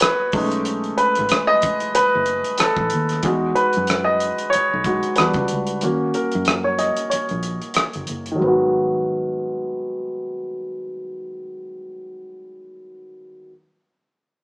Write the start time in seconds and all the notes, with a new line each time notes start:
Already playing: B3 F#4 A#4 C#5 D#5
0.00 B4, cross-stick, closed hi-hat
0.32 B1 G#3 A3 C#4 D#4, kick, open hi-hat
0.52 closed hi-hat
0.65 closed hi-hat
0.84 closed hi-hat
0.98 B4, closed hi-hat
1.15 G#1, closed hi-hat
1.29 cross-stick, closed hi-hat
1.47 D#5
1.62 kick, closed hi-hat
1.80 closed hi-hat
1.95 B4, muted fingered electric bass stroke, closed hi-hat
2.15 F#1
2.26 closed hi-hat
2.44 closed hi-hat
2.58 A4, cross-stick, closed hi-hat
2.77 A1, kick
2.90 D#2, closed hi-hat
3.09 cross-stick, closed hi-hat
3.23 E2 G#3 D#4 F#4, kick, closed hi-hat
3.55 B4, closed hi-hat
3.73 closed hi-hat
3.77 F#2
3.87 cross-stick, closed hi-hat
4.04 D#5
4.20 closed hi-hat
4.38 closed hi-hat
4.50 C#5, closed hi-hat
4.55 muted fingered electric bass stroke
4.74 B1
4.84 G#3 D#4 F#4, kick, closed hi-hat
5.03 closed hi-hat
5.16 G3 D4 F#4 B4, cross-stick, closed hi-hat
5.20 E2
5.34 C#2, kick, closed hi-hat
5.48 closed hi-hat
5.52 C#2
5.67 closed hi-hat
5.81 D#2 A#3 C#4 F#4, closed hi-hat
6.14 A#4, closed hi-hat
6.32 F#2, closed hi-hat
6.45 cross-stick, closed hi-hat
6.64 C#5
6.79 D#5, cross-stick, closed hi-hat
6.97 closed hi-hat
7.10 C#5, muted fingered electric bass stroke, closed hi-hat
7.29 A#1, closed hi-hat
7.43 closed hi-hat
7.62 closed hi-hat
7.74 cross-stick, closed hi-hat
7.93 F#1, closed hi-hat
8.07 F#1, closed hi-hat
8.26 closed hi-hat
8.32 D#3
8.36 F#3
8.40 G#1 G#3
8.44 B3 F#4